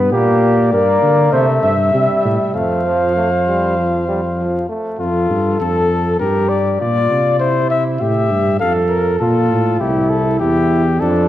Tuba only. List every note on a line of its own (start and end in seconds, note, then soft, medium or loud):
0.00 0.14 G2 medium
0.12 0.74 A#2 medium
0.73 1.02 G2 medium
1.02 1.32 D3 medium
1.33 1.62 C3 medium
1.63 1.93 G2 medium
1.94 2.07 C3 medium
2.25 2.38 A2 medium
2.54 4.64 F2 medium
4.99 5.27 F2 medium
5.30 5.59 G2 medium
5.60 6.19 F2 medium
6.21 6.79 G2 medium
6.81 7.10 A#2 medium
7.11 7.99 C3 medium
8.01 8.33 A2 medium
8.31 8.60 G2 medium
8.61 9.19 F2 medium
9.21 9.52 A#2 medium
9.51 9.80 A2 medium
9.81 10.39 C2 medium
10.41 11.00 E2 medium
11.01 11.28 F2 loud